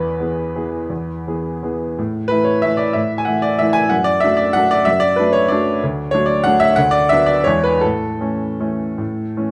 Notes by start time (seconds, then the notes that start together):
Already playing: E2 B4
0.20 E3 B3 G#4
0.56 E3 B3 G#4
0.90 E2
1.27 E3 B3 G#4
1.63 E3 B3 G#4
1.98 A2
2.28 E3 A3 E4 B4
2.44 C#5
2.62 E3 A3 E4 E5
2.77 D5
2.93 A2 E5
3.18 G#5
3.25 E3 A3 E4 F#5
3.42 D5
3.59 E3 A3 E4 E5
3.73 G#5
3.89 F#2 F#5
4.04 D5
4.20 F#3 A3 D4 E5
4.37 D5
4.53 F#3 A3 D4 F#5
4.71 D5
4.85 F#2 E5
5.00 D5
5.16 F#3 A3 D4 B4
5.33 C#5
5.48 F#3 A3 D4 D5
5.83 D2
6.11 F#3 A3 D4 C#5
6.26 D5
6.44 F#3 A3 D4 F#5
6.60 E5
6.76 D2 F#5
6.91 D5
7.09 F#3 B3 D4 E5
7.26 D5
7.44 E2 E3 G#3 C#5
7.48 D4
7.64 B4
7.81 A2 A4
8.20 E3 A3 C#4
8.60 E3 A3 C#4
8.98 A2
9.37 E3 A3 C#4